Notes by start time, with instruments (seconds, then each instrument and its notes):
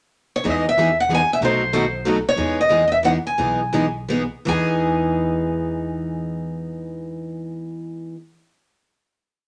0.36 steel-string acoustic guitar C#5
0.45 upright bass E2, steel-string acoustic guitar E3 G#3 B3 D#4 G#4
0.50 steel-string acoustic guitar D#5
0.69 steel-string acoustic guitar E5
0.77 steel-string acoustic guitar E3 G#3 B3 D#4 G#4
1.00 steel-string acoustic guitar F#5
1.09 steel-string acoustic guitar E3 G#3 B3 D#4 G#4
1.15 steel-string acoustic guitar G#5
1.33 steel-string acoustic guitar E5
1.41 upright bass B1, steel-string acoustic guitar B2 D#3 F#3 A3 B3 D#4 F#4 A4 C5
1.73 steel-string acoustic guitar B2 D#3 F#3 A3 B3 D#4 F#4 A4
2.06 steel-string acoustic guitar B2 D#3 F#3 A3 B3 D#4 F#4 A4
2.29 steel-string acoustic guitar C#5
2.36 upright bass E2, steel-string acoustic guitar E3 G#3 B3
2.41 steel-string acoustic guitar D#4 G#4
2.61 steel-string acoustic guitar D#5
2.71 steel-string acoustic guitar E3 G#3 B3 D#4 G#4
2.88 steel-string acoustic guitar D#5
2.92 steel-string acoustic guitar E5
3.05 steel-string acoustic guitar E3 G#3 B3 D#4 G#4 F#5
3.27 steel-string acoustic guitar G#5
3.38 upright bass B1, steel-string acoustic guitar E3 G#3 B3 D#4 G#4
3.73 steel-string acoustic guitar E3 G#3 B3 D#4 G#4
4.09 steel-string acoustic guitar E3 G#3 B3 D#4 G#4
4.45 upright bass E2, steel-string acoustic guitar E3 G#3 B3 D#4 G#4 G#5